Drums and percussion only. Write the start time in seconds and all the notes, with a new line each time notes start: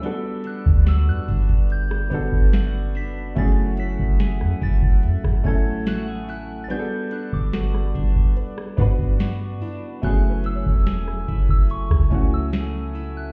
0.03 closed hi-hat
0.44 closed hi-hat
0.66 kick
0.87 snare, closed hi-hat
1.28 kick, closed hi-hat, open hi-hat
1.49 kick, closed hi-hat
1.70 closed hi-hat
1.91 cross-stick
2.11 kick, closed hi-hat
2.32 kick
2.53 snare, closed hi-hat
2.95 open hi-hat
3.36 kick, closed hi-hat
3.77 closed hi-hat
3.99 kick
4.20 snare, closed hi-hat
4.41 cross-stick
4.62 kick, closed hi-hat
4.82 kick
5.03 closed hi-hat
5.24 kick, cross-stick
5.45 kick, closed hi-hat
5.86 snare, closed hi-hat
6.29 open hi-hat
6.70 closed hi-hat
7.11 closed hi-hat
7.33 kick
7.53 snare, closed hi-hat
7.74 cross-stick
7.95 kick, closed hi-hat
8.16 kick
8.37 closed hi-hat
8.58 cross-stick
8.78 kick, closed hi-hat
8.99 kick
9.20 snare, closed hi-hat
9.62 open hi-hat
10.03 kick, closed hi-hat
10.44 closed hi-hat
10.66 kick
10.87 snare, closed hi-hat
11.08 cross-stick
11.28 kick, closed hi-hat
11.49 kick
11.70 closed hi-hat
11.90 kick, cross-stick
12.11 kick, closed hi-hat
12.53 snare, closed hi-hat
12.95 open hi-hat